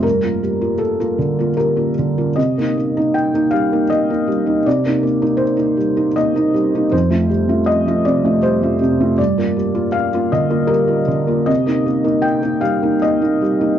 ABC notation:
X:1
M:3/4
L:1/16
Q:1/4=79
K:Cdor
V:1 name="Felt piano"
B4 A4 B4 | e4 g2 f2 e4 | d4 c4 e2 z2 | c4 e2 d2 c4 |
d4 f2 e2 B4 | e4 g2 f2 e4 |]
V:2 name="Felt piano"
G,, [B,F] G, [B,F]2 [B,F] D, [B,F] G, [B,F] D, [B,F] | C, [B,E] B, [B,E]2 [B,E] G, [B,E] B, [B,E] G, [B,E] | C, [B,E] B, [B,E]2 [B,E] G, [B,E] B, [B,E] G, [B,E] | F,, [A,F] G, [A,F]2 [A,F] C, [A,F] G, [A,F] C, [A,F] |
G,, [B,F] G, [B,F]2 [B,F] D, [B,F] G, [B,F] D, [B,F] | C, [B,E] B, [B,E]2 [B,E] G, [B,E] B, [B,E] G, [B,E] |]